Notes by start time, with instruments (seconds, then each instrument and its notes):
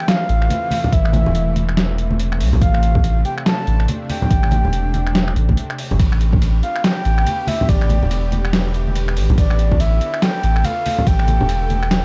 Already playing: synth drone C3 E3 A3, soft synth lead G5
0.08 soft synth lead F5, snare, closed hi-hat
0.29 sub bass A1, closed hi-hat
0.42 finger snap
0.50 closed hi-hat, high conga
0.71 open hi-hat, high conga
0.84 low conga
0.93 sub bass A1, soft synth lead E5, kick, closed hi-hat
1.05 finger snap
1.13 closed hi-hat, high conga
1.26 sub bass E1, low conga
1.35 closed hi-hat
1.56 closed hi-hat, high conga
1.69 finger snap
1.77 snare, closed hi-hat
1.98 closed hi-hat
2.11 high conga
2.19 closed hi-hat
2.32 finger snap
2.40 sub bass C2, open hi-hat
2.53 sub bass B1, low conga
2.61 sub bass A1, synth drone D4, soft synth lead F5, kick, closed hi-hat
2.74 finger snap
2.83 closed hi-hat
2.95 kick, low conga
3.04 closed hi-hat
3.25 soft synth lead G5, closed hi-hat
3.38 finger snap
3.46 soft synth lead A5, snare, closed hi-hat
3.67 sub bass A1, closed hi-hat
3.80 finger snap
3.88 closed hi-hat, high conga
4.09 soft synth lead G5, open hi-hat, high conga
4.22 low conga
4.31 sub bass A1, kick, closed hi-hat
4.43 finger snap
4.51 closed hi-hat, high conga
4.65 sub bass E1, low conga
4.73 closed hi-hat
4.94 closed hi-hat, high conga
5.07 finger snap
5.15 snare, closed hi-hat
5.28 finger snap
5.36 sub bass A1, closed hi-hat
5.49 kick, high conga
5.57 closed hi-hat
5.70 finger snap
5.78 open hi-hat
5.91 sub bass G1, low conga
5.99 sub bass A1, synth drone D3 B3 G4, kick, closed hi-hat, ride
6.12 finger snap
6.21 closed hi-hat
6.33 kick, low conga
6.42 closed hi-hat, ride
6.63 soft synth lead F5, closed hi-hat
6.76 finger snap
6.84 soft synth lead G5, snare, closed hi-hat, ride
7.05 sub bass A1, closed hi-hat
7.18 finger snap
7.26 closed hi-hat, ride, high conga
7.47 soft synth lead E5, open hi-hat, high conga
7.61 low conga
7.69 sub bass A1, soft synth lead D5, kick, closed hi-hat, ride
7.81 finger snap
7.89 closed hi-hat, high conga
8.02 sub bass E1, low conga
8.11 closed hi-hat, ride
8.32 closed hi-hat, high conga
8.45 finger snap
8.53 snare, closed hi-hat, ride
8.74 closed hi-hat
8.87 high conga
8.95 closed hi-hat, ride
9.08 finger snap
9.17 sub bass A1, open hi-hat
9.29 sub bass B1, low conga
9.38 sub bass A1, synth drone A4, soft synth lead D5, kick, closed hi-hat, ride
9.50 finger snap
9.59 closed hi-hat
9.72 kick, low conga
9.80 soft synth lead E5, closed hi-hat, ride
10.01 closed hi-hat
10.14 finger snap
10.22 soft synth lead G5, snare, closed hi-hat, ride
10.43 sub bass A1, closed hi-hat
10.56 finger snap
10.64 soft synth lead F5, closed hi-hat, ride, high conga
10.86 open hi-hat, high conga
10.98 low conga
11.07 sub bass A1, soft synth lead G5, kick, closed hi-hat, ride
11.19 finger snap
11.28 closed hi-hat, high conga
11.40 sub bass E1, low conga
11.49 closed hi-hat, ride
11.70 closed hi-hat, high conga
11.83 finger snap
11.91 snare, closed hi-hat, ride